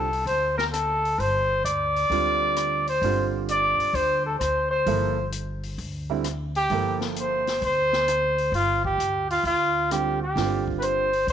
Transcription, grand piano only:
2.10 2.81 D3 medium
2.10 2.82 G3 medium
2.10 2.82 C4 medium
2.10 2.82 F4 medium
3.03 4.32 D3 medium
3.03 4.32 G3 medium
3.03 4.32 C4 medium
3.03 4.33 F4 medium
4.87 5.15 F3 medium
4.87 5.15 A#3 medium
4.87 5.15 E4 medium
4.87 5.15 A4 medium
6.10 6.23 D3 medium
6.10 6.23 G3 medium
6.10 6.23 C4 medium
6.10 6.23 E4 medium
6.71 7.41 F3 medium
6.71 7.41 A#3 medium
6.71 7.42 E4 medium
6.71 7.42 A4 medium
9.91 10.18 D3 soft
9.91 10.19 G3 soft
9.91 10.19 C4 soft
9.91 10.19 F4 medium
10.37 11.07 D3 medium
10.37 11.07 G3 medium
10.37 11.07 C4 medium
10.37 11.08 F4 medium

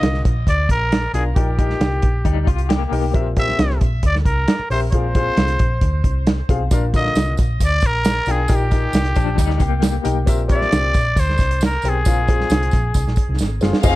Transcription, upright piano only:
0.00 0.21 A#2 medium
0.00 0.27 D3 medium
0.00 0.27 F4 medium
0.00 0.27 A#4 medium
0.00 0.27 F5 medium
1.14 1.26 D4 medium
1.14 1.26 F4 medium
1.14 1.26 A#4 medium
1.14 1.26 F5 medium
1.36 1.99 A#2 medium
1.36 1.47 D#4 medium
1.36 1.48 G4 medium
1.36 1.48 A#4 medium
1.36 1.48 G5 medium
1.58 2.04 D#4 medium
1.58 2.04 G4 medium
1.58 2.04 A#4 medium
1.58 2.05 G5 medium
2.91 3.03 D#4 medium
2.91 3.03 G4 medium
2.91 3.04 A#4 medium
2.91 3.04 G5 medium
3.14 3.77 A#2 medium
3.14 3.26 C4 medium
3.14 3.26 G4 medium
3.14 3.26 A#4 medium
3.14 3.26 E5 medium
3.37 3.83 C4 medium
3.37 3.83 G4 medium
3.37 3.83 A#4 medium
3.37 3.83 E5 medium
4.71 4.82 C4 medium
4.71 4.83 G4 medium
4.71 4.83 A#4 medium
4.71 4.83 E5 medium
4.93 5.56 A#2 medium
4.93 5.04 C4 medium
4.93 5.04 F4 medium
4.93 5.05 G#4 medium
4.93 5.05 F5 medium
5.16 5.61 C4 medium
5.16 5.61 F4 medium
5.16 5.62 G#4 medium
5.16 5.62 F5 medium
6.49 6.61 C4 medium
6.49 6.61 F4 medium
6.49 6.61 G#4 medium
6.49 6.61 F5 medium
6.72 7.35 A#2 medium
6.72 6.83 D4 medium
6.72 6.83 F4 medium
6.72 6.84 A#4 medium
6.72 6.83 F5 medium
6.94 7.40 D3 medium
6.94 7.40 F4 medium
6.94 7.40 A#4 medium
6.94 7.40 F5 medium
8.27 8.39 D4 medium
8.27 8.39 F4 medium
8.27 8.39 A#4 medium
8.27 8.39 G5 medium
8.48 9.12 A#2 medium
8.48 8.60 D#4 medium
8.48 8.61 G4 medium
8.48 8.61 A#4 medium
8.48 8.61 G5 medium
8.70 9.17 D#4 medium
8.70 9.18 G4 medium
8.70 9.17 A#4 medium
8.70 9.18 G5 medium
10.04 10.16 D#4 medium
10.04 10.16 G4 medium
10.04 10.16 A#4 medium
10.04 10.17 G5 medium
10.26 10.90 A#2 medium
10.26 10.39 C4 medium
10.26 10.39 G4 medium
10.26 10.39 A#4 medium
10.26 10.39 E5 medium
10.48 10.95 C4 medium
10.48 10.95 G4 medium
10.48 10.95 A#4 medium
10.48 10.55 D5 medium
10.55 10.98 E5 medium
11.84 11.96 C4 medium
11.84 11.96 G4 medium
11.84 11.96 A#4 medium
11.84 11.96 G5 medium
12.06 12.69 A#2 medium
12.06 12.18 C4 medium
12.06 12.18 F4 medium
12.06 12.18 G#4 medium
12.06 12.18 F5 medium
12.29 12.74 C4 medium
12.29 12.74 F4 medium
12.29 12.75 G#4 medium
12.29 12.75 F5 medium
13.61 13.73 C4 medium
13.61 13.73 F4 medium
13.61 13.74 G#4 medium
13.61 13.74 F5 medium
13.84 13.96 C4 medium
13.84 13.96 D#4 medium
13.84 13.96 F4 medium
13.84 13.96 G#4 medium
13.84 13.96 D#5 loud

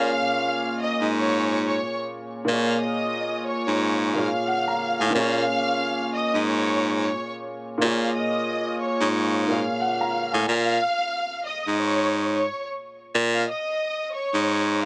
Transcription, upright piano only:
0.00 2.41 A#2 medium
0.00 2.43 A#3 medium
0.00 2.44 C#4 medium
0.00 2.45 G#4 medium
0.00 2.46 C#5 medium
0.00 2.49 G#5 medium
2.44 4.09 A#2 medium
2.44 4.10 A#3 medium
2.49 4.11 F4 medium
2.49 4.13 G#4 medium
2.53 4.14 C#5 medium
4.14 5.09 A#2 medium
4.14 5.11 A#3 medium
4.14 5.15 F4 medium
4.14 5.15 G#4 medium
4.18 5.16 C#5 medium
4.47 4.66 F#5 medium
4.68 4.99 A#5 medium
4.99 5.31 G#5 medium
5.10 7.75 A#2 medium
5.10 7.76 A#3 medium
5.15 7.77 C#4 medium
5.15 7.78 G#4 medium
5.19 7.79 C#5 medium
7.78 9.43 A#2 medium
7.78 9.44 A#3 medium
7.82 9.45 F4 medium
7.82 9.46 G#4 medium
7.86 9.47 C#5 medium
9.47 10.47 A#2 medium
9.47 10.48 A#3 medium
9.47 10.48 F4 medium
9.47 10.49 G#4 medium
9.51 10.49 C#5 medium
9.81 9.99 F#5 medium
10.01 10.32 A#5 medium
10.32 10.46 G#5 medium

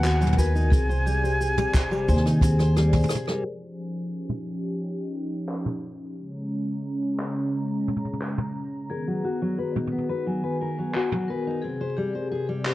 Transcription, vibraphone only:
0.00 0.04 F#4 loud
0.00 0.14 F#4 loud
0.00 0.74 B4 medium
0.00 0.74 G#5 loud
0.37 0.54 A#4 loud
0.70 0.88 G#4 loud
1.06 1.22 G4 loud
1.74 1.91 C5 medium
2.08 2.25 G#5 loud
2.43 2.59 G#4 medium
2.60 2.76 G#4 medium
2.77 2.86 C5 medium
3.11 3.27 G#4 medium
3.28 3.44 A#4 medium
8.90 9.06 G#4 medium
9.25 9.41 F#4 medium
9.92 10.08 B4 medium
10.27 10.43 G#5 medium
10.61 10.76 G#5 medium
10.77 10.87 G#5 medium
10.94 11.04 F#4 medium
11.28 11.45 A#4 medium
11.62 11.79 G#4 medium
11.97 12.13 G4 medium
12.66 12.74 C5 medium

